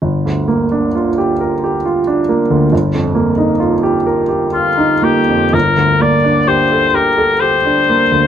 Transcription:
<<
  \new Staff \with { instrumentName = "Oboe" } { \time 3/4 \key g \minor \tempo 4 = 65 r2. | r2 f'8 g'8 | bes'8 d''8 c''8 bes'8 c''4 | }
  \new Staff \with { instrumentName = "Grand piano" } { \time 3/4 \key g \minor g,,16 d,16 bes16 d'16 f'16 g'16 bes'16 g'16 f'16 d'16 bes16 d,16 | g,,16 f,16 bes16 ees'16 f'16 g'16 bes'16 g'16 f'16 ees'16 bes16 f,16 | g,,16 d,16 bes16 d'16 g'16 a'16 g'16 a'16 g'16 d'16 bes16 d,16 | }
>>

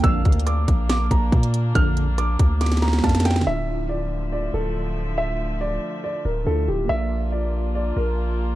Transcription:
<<
  \new Staff \with { instrumentName = "Grand piano" } { \time 4/4 \key d \minor \tempo 4 = 140 e'''4 d'''4 d'''8 bes''4. | f'''4 d'''4 d'''8 bes''8 a''8 g''8 | e''4 d''4 d''8 a'4. | e''4 d''4 d''8 bes'8 a'8 g'8 |
e''4 d''4 d''8 bes'4. | }
  \new Staff \with { instrumentName = "Synth keys" } { \time 4/4 \key d \minor <bes bes' d'' f''>1~ | <bes bes' d'' f''>2. <bes bes' d'' f''>4 | <d d' e' f'>1~ | <d d' e' f'>2. <d d' e' f'>4 |
<bes f' bes' d''>1 | }
  \new Staff \with { instrumentName = "String section" } { \time 4/4 \key d \minor <bes d'>1~ | <bes d'>1 | <d f a e''>1~ | <d f a e''>1 |
<bes d' f'>1 | }
  \new Staff \with { instrumentName = "Analog polysynth" } { \clef bass \time 4/4 \key d \minor <bes,, f, d>8. r2. r16 | <bes,, f, d>8. r2. r16 | r1 | r1 |
r1 | }
  \new Staff \with { instrumentName = "808-style bass" } { \clef bass \time 4/4 \key d \minor bes,,8 d,4 bes,,4 bes,,8 bes,4 | bes,,4. d,4. f,4 | d,,2~ d,,8 d,,4.~ | d,,4. r4 d,,8 d,8 d,,8 |
bes,,2~ bes,,8 bes,,4. | }
  \new DrumStaff \with { instrumentName = "Drums" } \drummode { \time 4/4 \tuplet 3/2 { <hh bd>16 r16 r16 <hh bd>16 hh16 hh16 } <hh ss>8 <hh bd>8 <hh sn>8 <hh bd>8 <hh bd>16 hh16 hh8 | <hh bd>8 hh8 <hh ss>8 <hh bd>8 <hh sn>32 <hh sn>32 <hh sn>32 <hh sn>32 sn32 sn32 sn32 sn32 <hh bd sn>32 <hh sn>32 <hh sn>32 <hh sn>32 <hh sn>32 sn32 sn32 sn32 | r4 r4 r4 r4 | r4 r4 r4 r4 |
r4 r4 r4 r4 | }
>>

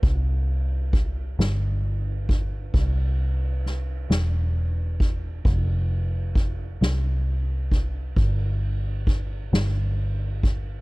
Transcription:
<<
  \new Staff \with { instrumentName = "Fingered electric bass" } { \clef bass \time 6/8 \key c \major \tempo 4. = 44 c,4. g,,4. | c,4. e,,4. | f,,4. c,4. | g,,4. g,,4. | }
  \new DrumStaff \with { instrumentName = "Drums" } \drummode { \time 6/8 <bd cymr>8 cymr8 <bd cymr>8 <cymr sn>8 cymr8 <bd cymr>8 | <bd cymr>8 cymr8 <cymr sn>8 <cymr sn>8 cymr8 <bd cymr>8 | <bd cymr>8 cymr8 <bd cymr>8 <cymr sn>8 cymr8 <bd cymr>8 | <bd cymr>8 cymr8 <bd cymr>8 <cymr sn>8 cymr8 <bd cymr>8 | }
>>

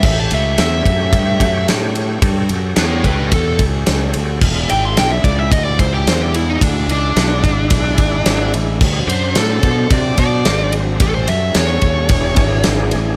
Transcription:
<<
  \new Staff \with { instrumentName = "Lead electric guitar" } { \time 4/4 \key e \dorian \tempo 4 = 109 e''16 a''16 e''8 e''2 r4 | r4 <e' cis''>8 <g' b'>8 a'8 r4. | r8 g''16 c'''16 g''16 e''16 d''16 e''16 dis''16 d''16 c''16 g'16 c''16 g'16 e'16 dis'16 | d'8 d'2. r8 |
r8 c''8 a'4 d''8 d''4 r8 | a'16 c''16 e''8 cis''2 r4 | }
  \new Staff \with { instrumentName = "Tonewheel organ" } { \time 4/4 \key e \dorian <a g' cis''>1 | <g' a' cis''>1 | \tuplet 3/2 { <a f' dis''>8 <gis e' d''>4~ } <gis e' d''>2. | <gis d' e'>1 |
\tuplet 3/2 { <g dis' cis''>8 <fis d' c''>4~ } <fis d' c''>2. | <g cis' a'>2 <e d' gis'>2 | }
  \new Staff \with { instrumentName = "Fingered electric bass" } { \clef bass \time 4/4 \key e \dorian a,,8 cis,8 e,8 fis,8 g,8 fis,8 a,4 | g,8 fis,8 e,8 cis,8 e,8 cis,8 cis,8 d,8 | e,,8 gis,,8 b,,8 cis,8 d,8 cis,8 e,4 | d,8 cis,8 b,,8 gis,,8 b,,8 gis,,8 gis,,8 a,,8 |
d,8 fis,8 a,8 b,8 c8 b,8 gis,,4 | a,,8 fis,8 e,8 dis,8 e,,8 gis,,8 gis,,8 a,,8 | }
  \new DrumStaff \with { instrumentName = "Drums" } \drummode { \time 4/4 <cymc bd>8 cymr8 <cymr sn>8 <bd cymr>8 <bd cymr>8 <bd cymr>8 <cymr sn>8 cymr8 | <bd cymr>8 cymr8 <cymr sn>8 <bd cymr>8 <bd cymr>8 <bd cymr>8 <cymr sn>8 cymr8 | <cymc bd>8 cymr8 <cymr sn>8 <bd cymr>8 <bd cymr>8 <bd cymr>8 <cymr sn>8 cymr8 | <bd cymr>8 cymr8 <cymr sn>8 <bd cymr>8 <bd cymr>8 <bd cymr>8 <cymr sn>8 cymr8 |
<cymc bd>8 cymr8 <cymr sn>8 <bd cymr>8 <bd cymr>8 <bd cymr>8 <cymr sn>8 cymr8 | <bd cymr>8 cymr8 <cymr sn>8 <bd cymr>8 <bd cymr>8 <bd cymr>8 <cymr sn>8 cymr8 | }
>>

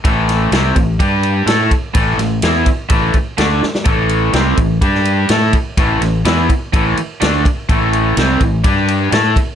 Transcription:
<<
  \new Staff \with { instrumentName = "Overdriven electric guitar" } { \clef bass \time 4/4 \key g \lydian \tempo 4 = 126 <a, e a>4 <c g c'>8 <a, e>8 <g d' g'>4 <a e' a'>8 r8 | <a, e a>8 <a, e>8 <e b e'>8 r8 <a, e a>8 r8 <d a d'>8 r8 | <a, e a>4 <c g c'>8 <a, e>8 <g d' g'>4 <a e' a'>8 r8 | <a, e a>8 <a, e>8 <e b e'>8 r8 <a, e a>8 r8 <d a d'>8 r8 |
<a, e a>4 <c g c'>8 <a, e>8 <g d' g'>4 <a e' a'>8 r8 | }
  \new Staff \with { instrumentName = "Fingered electric bass" } { \clef bass \time 4/4 \key g \lydian a,,4 c,8 a,,8 g,4 a,8 r8 | a,,8 a,,8 e,8 r8 a,,8 r8 d,8 r8 | a,,4 c,8 r8 g,4 a,8 r8 | a,,8 a,,8 e,8 r8 a,,8 r8 d,8 r8 |
a,,4 c,8 a,,8 g,4 a,8 r8 | }
  \new DrumStaff \with { instrumentName = "Drums" } \drummode { \time 4/4 <bd cymr>8 <cymr sn>8 <cymr sn>8 <bd cymr>8 <bd cymr>8 cymr8 <cymr sn>8 <bd cymr>8 | <bd cymr>8 <cymr sn>8 <cymr sn>8 <bd cymr>8 <bd cymr>8 <bd cymr>8 <cymr sn>8 sn16 sn16 | <bd cymr>8 cymr8 <cymr sn>8 <bd cymr>8 <bd cymr>16 sn16 cymr8 <cymr sn>8 <bd cymr>8 | <bd cymr>8 <cymr sn>8 <cymr sn>8 <bd cymr>8 <bd cymr>8 cymr8 <cymr sn>8 <bd cymr>8 |
<bd cymr>8 cymr8 <cymr sn>8 <bd cymr>8 <bd cymr>8 cymr8 <cymr sn>8 <bd cymr>8 | }
>>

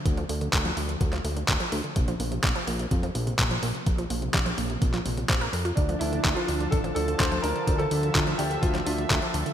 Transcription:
<<
  \new Staff \with { instrumentName = "Grand piano" } { \time 4/4 \key d \minor \tempo 4 = 126 r1 | r1 | r1 | d'8 e'8. f'8. a'8 a'8 c''8 bes'8~ |
bes'16 a'8. f'8 g'8 f'8 f'4 r8 | }
  \new Staff \with { instrumentName = "Analog synth pad" } { \time 4/4 \key d \minor << { r1 | r1 | r1 | <d f a''>1~ |
<d f a''>1 | } \\ { r1 | r1 | r1 | d'1 |
e''1 | } >> }
  \new Staff \with { instrumentName = "Synth arpeggio sound" } { \clef bass \time 4/4 \key d \minor d16 f16 a16 d16 d16 f16 a16 d16 d16 f16 a16 d16 d16 f16 a16 d16 | c16 f16 bes16 c16 c16 f16 bes16 c16 c16 f16 bes16 c16 c16 f16 bes16 c16 | c16 f16 bes16 c16 c16 f16 bes16 c16 c16 f16 c16 c16 c''16 bes'16 bes'16 f'16 | d16 f16 d'16 d16 d16 f16 d'16 d16 d16 f16 d'16 d16 d16 f16 d'16 d16 |
d16 f16 d'16 d16 d16 f16 d'16 d16 d16 f16 d'16 d16 d16 f16 d'16 d16 | }
  \new Staff \with { instrumentName = "Analog synth bass" } { \clef bass \time 4/4 \key d \minor d,8 d,8 d,8 d,8 d,8 d,8 d,8 d,8 | bes,,8 bes,,8 bes,,8 bes,,8 f,8 bes,,8 bes,,8 bes,,8 | bes,,8 bes,,8 bes,,8 bes,,8 bes,,8 bes,,8 bes,,8 f,8 | d,8 d,8 d,8 d,8 a,,8 d,8 d,8 d,8 |
d,8 d,8 d,8 d,8 d,8 d,8 d,8 d,8 | }
  \new DrumStaff \with { instrumentName = "Drums" } \drummode { \time 4/4 <hh bd>16 hh16 hho16 hh16 <hc hh bd>16 hh16 hho16 hh16 <hh bd>16 <hc hh>16 hho16 hh16 <hc hh bd>16 hh16 hho16 hh16 | <hh bd>16 hh16 hho16 hh16 <hc hh bd>16 hh16 hho16 hh16 <hh bd>16 hh16 hho16 hh16 <hc hh bd>16 hh16 hho16 hh16 | <hh bd>16 hh16 hho16 hh16 <hc hh bd>16 hh16 hho16 hh16 <hh bd>16 <hc hh>16 hho16 hh16 <hc hh bd>16 hh16 hho16 hh16 | <hh bd>16 hh16 hho16 hh16 <hc hh bd>16 hh16 hho16 hh16 <hh bd>16 hh16 hho16 hh16 <hc hh bd>16 hh16 hho16 hh16 |
<hh bd>16 hh16 hho16 hh16 <hc hh bd>16 hh16 hho16 hh16 <hh bd>16 <hc hh>16 hho16 hh16 <hc hh bd>16 hh16 hho16 hh16 | }
>>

